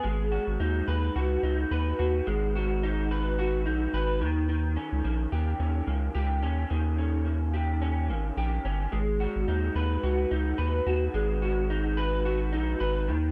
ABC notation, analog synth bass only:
X:1
M:4/4
L:1/16
Q:"Swing 16ths" 1/4=108
K:G#m
V:1 name="Analog synth bass" clef=bass
G,,,3 G,,, D,,2 D,,2 C,,2 C,,2 D,,2 D,,2 | G,,,8- G,,,2 A,,,2 G,,,2 D,,2- | D,,3 C,, A,,,2 D,,2 D,,2 C,,2 C,,2 D,,2 | D,,8- D,,2 G,,,2 A,,,2 =G,,,2 |
G,,,3 G,,, D,,2 D,,2 C,,2 C,,2 D,,2 D,,2 | G,,,8- G,,,2 A,,,2 G,,,2 D,,2 |]